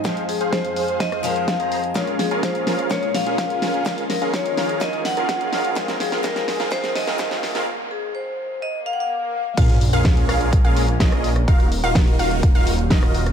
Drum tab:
CC |----------------|----------------|----------------|----------------|
HH |xxoxxxoxxxoxxxox|xxoxxxoxxxoxxxox|xxoxxxoxxxoxxxox|xxoxxxoxxxoxxxox|
SD |o---o---or--o---|o-o-o-o-o-o-o-o-|o-o-o-o-o-o-o-o-|oooooooooooooooo|
BD |o---o---o---o---|o---o---o---o---|o---o---o---o---|o---o---o---o---|

CC |----------------|x---------------|----------------|
HH |----------------|xxoxxxoxxxoxxxox|xxoxxxoxxxoxxxox|
SD |----------------|----o-r-----or-r|----o-------or-r|
BD |----------------|o---o---o---o---|o---o---o---o---|